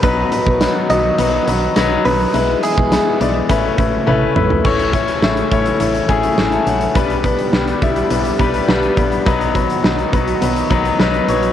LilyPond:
<<
  \new Staff \with { instrumentName = "Clean electric guitar" } { \time 4/4 \key a \major \tempo 4 = 104 b'4. dis''2 b'8~ | b'8 gis'4 r2 r8 | r1 | r1 |
r1 | }
  \new Staff \with { instrumentName = "Grand piano" } { \time 4/4 \key a \major << { r1 | r1 | r2. <gis'' cis'''>16 <e'' a''>16 <cis'' fis''>16 <b' e''>16~ | <b' e''>16 r2. r8. |
r1 | } \\ { <fis b dis' b'>8 <fis b dis' b'>8 <fis b dis' b'>8 <fis b dis' b'>8 <fis b dis' b'>8 <fis b dis' b'>8 <fis b dis' b'>8 <fis b dis' b'>8 | <gis b e' b'>8 <gis b e' gis'>8 <gis b e' b'>8 <gis b e' d''>8 <a cis' e' b'>8 <a cis' e' b'>8 <a cis' e' b'>8 <a cis' e' b'>8 | <a cis' e' cis''>8 <a cis' e' cis''>8 <a cis' e' cis''>8 <a cis' e' cis''>8 <a cis' e' cis''>8 <a cis' e' gis'>8 r4 | <g b d' b'>8 <g b d' b'>8 <g b d' b'>8 <g b d' e'>8 <g b d' b'>8 <g b d' b'>8 <g b d' b'>8 <g b d' b'>8 |
<fis b dis' b'>8 <fis b dis' b'>8 <fis b dis' b'>8 <fis b dis' b'>8 <fis b dis' b'>8 <fis b dis' b'>8 <fis b dis' b'>8 <fis b dis' cis''>8 | } >> }
  \new Staff \with { instrumentName = "Analog synth pad" } { \clef bass \time 4/4 \key a \major << { <dis fis fis'>1 | <e gis gis'>2 <cis a e'>2 | <cis e e'>1 | <d g g'>1 |
<dis fis fis'>1 | } \\ { b1~ | b1 | a1 | b1~ |
b1 | } >> }
  \new Staff \with { instrumentName = "FM bass" } { \clef bass \time 4/4 \key a \major b,,8 r16 b,,8 r16 b,,8 b,,8 b,,8 b,,8 b,,8 | b,,8 r16 b,,8 r16 b,,8 a,,8 a,,8 a,,8 a,,8 | a,,4 a,,8 a,,8 a,,8 a,,8 a,,8 bes,,8 | b,,4 b,,8 b,,8 b,,8 b,,8 b,,8 bes,,8 |
b,,4 b,,8 b,,8 b,,8 b,,8 b,,8 bes,,8 | }
  \new DrumStaff \with { instrumentName = "Drums" } \drummode { \time 4/4 <hh bd>8 hh16 bd16 <hh sn tamb>8 hh8 hh8 hh8 <hh sn tamb>8 hho8 | hh8 hh16 bd16 <hh sn tamb>8 hh8 <hh bd>8 <hh bd>8 tommh8 toml16 tomfh16 | <cymc bd>16 hh16 <hh bd>16 hh16 sn16 hh16 <hh bd>16 hh16 hh16 hh16 <hh bd>16 hh16 sn16 hh16 hh16 hh16 | <hh bd>16 hh16 <hh bd>16 hh16 sn16 hh16 <hh bd>16 hh16 hh16 hh16 <hh bd>16 hh16 sn16 hh16 <hh bd>16 hh16 |
<hh bd>16 hh16 <hh bd>16 hh16 sn16 hh16 <hh bd>16 hh16 hh16 hh16 <hh bd>16 hh16 sn16 hh16 hh16 hh16 | }
>>